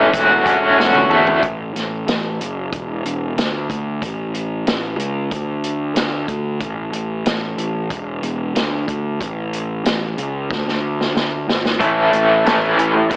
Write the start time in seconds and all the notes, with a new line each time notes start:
Already playing: E3 A3 C#4 A4 C#5 E5 F#5
0.13 E1 F#4, kick, closed hi-hat
0.46 E1 C#4, kick, closed hi-hat
0.77 E1 F#4, snare
0.95 high tom
1.09 E2 A3, mid tom
1.27 floor tom
1.43 A1, kick, closed hi-hat
1.75 A1, snare, closed hi-hat
2.07 A1, snare, closed hi-hat
2.40 F#1, closed hi-hat
2.73 E1, kick, closed hi-hat
3.05 E1, closed hi-hat
3.36 D2, snare, closed hi-hat
3.70 D2, kick, closed hi-hat
4.02 A1, kick, closed hi-hat
4.34 closed hi-hat
4.66 A1, snare, closed hi-hat
4.98 C#2, closed hi-hat
5.31 D2, kick, closed hi-hat
5.64 closed hi-hat
5.95 D2, snare, closed hi-hat
6.28 D2, kick, closed hi-hat
6.60 A1, kick, closed hi-hat
6.92 A1, closed hi-hat
7.26 A1, snare, closed hi-hat
7.57 A1, closed hi-hat
7.90 E1, kick, closed hi-hat
8.22 E1, closed hi-hat
8.55 D2, snare, closed hi-hat
8.88 D2, kick, closed hi-hat
9.21 A1, kick, closed hi-hat
9.53 closed hi-hat
9.85 A1, snare, closed hi-hat
10.18 C#2, closed hi-hat
10.50 D2, kick, snare
10.68 snare
11.01 snare
11.16 D2, snare
11.48 G#1, snare
11.66 snare
11.80 A1 A2 E3 A3 C#4 E4 A4 C#5 E5 A5, kick, closed hi-hat
12.11 A1 E3 A3 C#4 E4, closed hi-hat
12.44 A1 A2 E3 A3 C#4 E4, snare, closed hi-hat
12.77 A1 E3 A3 C#4 E4, closed hi-hat
12.94 muted overdriven electric guitar stroke
13.09 E1 E2 B2 E3 A3 B3 E4 B4, kick, closed hi-hat